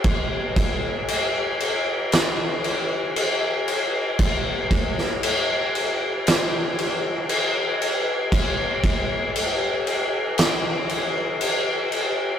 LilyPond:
\new DrumStaff \with { instrumentName = "Drums" } \drummode { \time 4/4 \tempo 4 = 58 <cymc bd>8 <cymc bd>8 cymc8 cymc8 <cymc sn>8 cymc8 cymc8 cymc8 | <cymc bd>8 <cymc bd>16 sn16 cymc8 cymc8 <cymc sn>8 cymc8 cymc8 cymc8 | <cymc bd>8 <cymc bd>8 cymc8 cymc8 <cymc sn>8 cymc8 cymc8 cymc8 | }